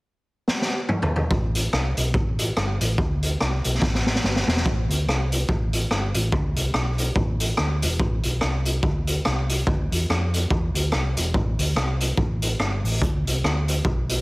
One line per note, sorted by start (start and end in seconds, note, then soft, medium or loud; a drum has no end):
0.48 snare medium
0.62 snare medium
0.89 mid tom medium
1.02 floor tom medium
1.16 floor tom medium
1.31 1.66 A1 medium
1.31 kick loud
1.55 closed hi-hat medium
1.73 1.93 C2 medium
1.73 cross-stick loud
1.97 2.14 B1 medium
1.97 closed hi-hat medium
2.14 2.50 A1 medium
2.14 kick loud
2.39 closed hi-hat loud
2.57 2.77 G1 medium
2.57 cross-stick loud
2.81 2.96 A1 medium
2.81 closed hi-hat loud
2.98 3.33 D2 loud
2.98 kick loud
3.23 closed hi-hat medium
3.40 3.61 C2 medium
3.40 cross-stick loud
3.64 3.80 B1 medium
3.64 closed hi-hat medium
3.82 4.18 A1 medium
3.82 kick loud
3.82 snare medium
3.95 snare medium
4.06 snare medium
4.15 snare medium
4.23 4.44 G1 medium
4.23 snare medium
4.36 snare medium
4.47 4.62 E1 medium
4.47 snare medium
4.57 snare medium
4.66 4.86 A1 loud
4.66 kick loud
4.89 5.04 D2 medium
4.89 closed hi-hat medium
5.07 5.43 C2 medium
5.07 cross-stick loud
5.32 closed hi-hat medium
5.49 5.84 A1 medium
5.49 kick loud
5.73 closed hi-hat loud
5.91 6.11 G1 medium
5.91 cross-stick loud
6.14 6.30 A1 medium
6.14 closed hi-hat loud
6.32 6.53 D2 loud
6.32 kick loud
6.56 6.71 C2 medium
6.56 closed hi-hat medium
6.74 7.10 B1 medium
6.74 cross-stick loud
6.98 closed hi-hat medium
7.16 7.52 A1 medium
7.16 kick loud
7.40 closed hi-hat loud
7.57 7.85 D2 medium
7.57 cross-stick loud
7.82 7.98 E1 medium
7.82 closed hi-hat loud
8.00 8.20 A1 medium
8.00 kick loud
8.23 8.40 B1 medium
8.23 closed hi-hat medium
8.41 8.78 C2 medium
8.41 cross-stick loud
8.65 closed hi-hat medium
8.83 9.19 D2 medium
8.83 kick loud
9.07 closed hi-hat loud
9.25 9.62 C2 medium
9.25 cross-stick loud
9.49 closed hi-hat medium
9.67 9.88 D2 medium
9.67 kick loud
9.91 10.06 E2 medium
9.91 closed hi-hat medium
10.09 10.45 F2 loud
10.09 cross-stick loud
10.34 closed hi-hat medium
10.50 10.71 E2 loud
10.50 kick loud
10.74 10.90 D2 medium
10.74 closed hi-hat loud
10.92 11.13 C2 medium
10.92 cross-stick loud
11.17 11.32 E1 medium
11.17 closed hi-hat loud
11.34 11.55 A1 medium
11.34 kick loud
11.59 11.74 D2 medium
11.59 closed hi-hat medium
11.75 12.11 C2 medium
11.75 cross-stick loud
12.00 closed hi-hat medium
12.17 12.53 A1 medium
12.17 kick loud
12.42 closed hi-hat loud
12.59 12.80 G1 medium
12.59 cross-stick loud
12.84 12.99 A1 medium
12.84 open hi-hat medium
13.02 13.22 D2 medium
13.02 kick loud
13.02 hi-hat pedal medium
13.25 13.41 C2 medium
13.25 closed hi-hat medium
13.44 13.80 D2 medium
13.44 cross-stick loud
13.68 closed hi-hat medium
13.85 14.21 B1 medium
13.85 kick loud
14.09 closed hi-hat loud